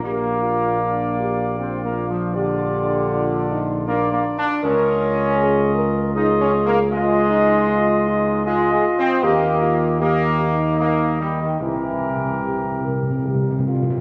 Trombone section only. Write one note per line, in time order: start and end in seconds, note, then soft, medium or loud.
0.04 1.54 A#3 loud
1.59 1.84 C4 medium
1.84 2.08 A#3 medium
2.10 2.33 F3 medium
2.34 3.87 D3 medium
3.86 4.10 A#3 loud
4.12 4.23 A#3 loud
4.38 4.61 D4 loud
4.64 6.15 C#4 loud
6.15 6.27 D#4 loud
6.40 6.51 C#4 loud
6.66 6.77 A#3 loud
6.91 8.41 G#3 loud
8.46 8.69 G#3 loud
8.72 8.83 G#3 loud
8.98 9.21 C4 loud
9.23 9.99 A#3 loud
10.00 10.75 A#3 loud
10.79 11.17 A#3 loud
11.20 11.39 G3 medium
11.41 11.60 D#3 medium
11.61 13.62 E3 medium